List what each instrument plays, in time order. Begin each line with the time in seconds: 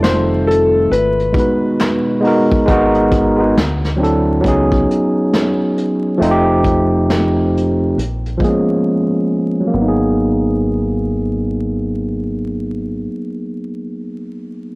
Already playing: fingered electric bass F1, ambient pad D#3 A3 F4, tine electric piano G3 C4 D#4 F4 A4
0.03 upright piano C5, finger snap, snare, closed hi-hat
0.47 upright piano A4, closed hi-hat
0.91 fingered electric bass G#1, ambient pad B2 G#3 F#4, upright piano B4, closed hi-hat
1.19 closed hi-hat
1.33 tine electric piano G#3 B3 D#4, kick
1.38 tine electric piano F#4 B4, closed hi-hat
1.80 finger snap, snare, closed hi-hat
2.21 tine electric piano G#3 B3 D#4, open hi-hat
2.26 tine electric piano F#4 A#4
2.51 kick
2.66 fingered electric bass G#1, tine electric piano G#3 B3 D#4, kick, closed hi-hat
2.71 tine electric piano F#4 A#4
2.94 closed hi-hat
3.12 kick, closed hi-hat
3.36 tine electric piano G#3 B3 D#4
3.42 tine electric piano F#4 G#4
3.57 fingered electric bass D2, snare, closed hi-hat
3.84 snare
3.96 tine electric piano F#3 C4 D4
4.02 tine electric piano E4 A4, closed hi-hat
4.41 fingered electric bass C#2, tine electric piano F#3 B3 C#4, kick
4.46 tine electric piano D#4 G#4, closed hi-hat
4.72 kick
4.91 closed hi-hat
5.33 snare, closed hi-hat
5.77 closed hi-hat
6.18 fingered electric bass F1, tine electric piano F3 A3 C4
6.22 tine electric piano D#4 F4, closed hi-hat
6.31 tine electric piano G4
6.64 kick, closed hi-hat
7.10 snare, closed hi-hat
7.57 closed hi-hat
7.98 fingered electric bass A#1, closed hi-hat
8.26 closed hi-hat
8.38 tine electric piano F3 G#3 A#3, kick
8.43 tine electric piano B3 G#4, closed hi-hat
8.49 tine electric piano C#4
9.60 tine electric piano F#3
9.67 tine electric piano A#3
9.74 fingered electric bass G#1, tine electric piano B3
9.81 tine electric piano D#4
9.88 tine electric piano G#4